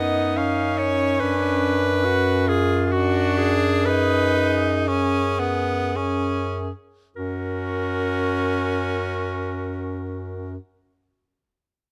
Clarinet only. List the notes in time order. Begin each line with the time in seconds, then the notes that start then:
Already playing: D#5
0.37 F5
0.78 C#5
1.20 B4
2.49 G#4
2.86 G#4
2.93 F#4
3.38 G#4
3.85 B4
7.16 A#4